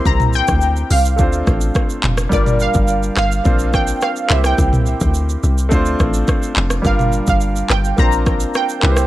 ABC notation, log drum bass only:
X:1
M:4/4
L:1/16
Q:1/4=106
K:Gdor
V:1 name="Log drum bass" clef=bass
C,,3 D,,3 C,,2 D,,2 A,,,2 z2 F,,,2 | G,,,3 G,,,3 G,,,2 B,,,4 z2 C,,2 | C,,3 D,,3 C,,2 D,,2 A,,,2 z2 F,,,2 | G,,,3 G,,,3 G,,,2 B,,,4 z2 C,,2 |]